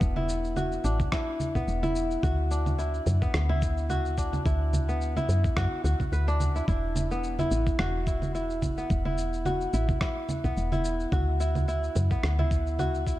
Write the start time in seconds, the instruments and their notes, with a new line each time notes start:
Already playing: kora B3 D4 E4 F#4
0.01 fm bass E1, kick, shaker
0.16 kora E4, low conga
0.29 shaker
0.45 shaker
0.56 kora F#4, low conga, shaker
0.72 shaker
0.84 fm bass A1, kora D4, shaker
1.00 kick, low conga, shaker
1.12 kora E4, kick, cross-stick, shaker
1.40 low conga, shaker
1.55 fm bass B1, kora B3, kick, shaker
1.68 fm bass E1, shaker
1.83 kora E4, low conga, shaker
1.96 shaker
2.11 shaker
2.23 fm bass D2, kora F#4, kick, low conga, shaker
2.51 kora D4, shaker
2.66 low conga, shaker
2.79 kora E4, shaker
2.94 shaker
3.06 fm bass F#2, low conga, shaker
3.22 kora B3, kick, shaker
3.34 fm bass D2, cross-stick, shaker
3.49 kora E4, low conga
3.62 kick, shaker
3.78 shaker
3.90 kora F#4, low conga, shaker
4.06 shaker
4.18 kora D4, kick, shaker
4.33 low conga, shaker
4.45 fm bass D2, kora E4, kick, shaker
4.73 low conga, shaker
4.89 kora B3, shaker
5.01 shaker
5.17 kora E4, low conga, shaker
5.29 fm bass F#2, shaker
5.44 kick, shaker
5.57 fm bass F#2, kora F#4, kick, cross-stick, low conga, shaker
5.84 fm bass D2, kora F#4, shaker
6.00 kick, low conga, shaker
6.12 fm bass D2, kora B4, shaker
6.28 kora D4, shaker
6.40 low conga, shaker
6.56 kora E4, shaker
6.68 fm bass E1, kora E4, kick, shaker
6.96 low conga, shaker
7.11 kora B3, shaker
7.24 shaker
7.39 kora E4, low conga, shaker
7.51 fm bass A1, shaker
7.67 kick, shaker
7.79 fm bass E1, kora F#4, cross-stick, low conga, shaker
8.07 kora E4, kick, shaker
8.22 low conga, shaker
8.35 kora E4, shaker
8.50 shaker
8.62 kick, low conga, shaker
8.78 kora B3, shaker
8.90 fm bass E1, kick, shaker
9.05 kora E4, low conga
9.18 shaker
9.33 shaker
9.45 kora F#4, low conga, shaker
9.61 shaker
9.73 fm bass A1, kora E4, shaker
9.89 kick, low conga, shaker
10.01 kora E4, kick, cross-stick, shaker
10.29 low conga, shaker
10.44 fm bass B1, kora B3, kick, shaker
10.57 fm bass E1, shaker
10.72 kora E4, low conga, shaker
10.85 shaker
11.00 shaker
11.12 fm bass D2, kora F#4, kick, low conga, shaker
11.40 kora E4, shaker
11.55 low conga, shaker
11.68 kora E4, shaker
11.84 shaker
11.95 fm bass F#2, low conga, shaker
12.11 kora B3, kick, shaker
12.23 fm bass D2, cross-stick, shaker
12.39 kora E4, low conga
12.51 kick, shaker
12.67 shaker
12.79 kora F#4, low conga, shaker
12.95 shaker
13.07 kora E4, kick, shaker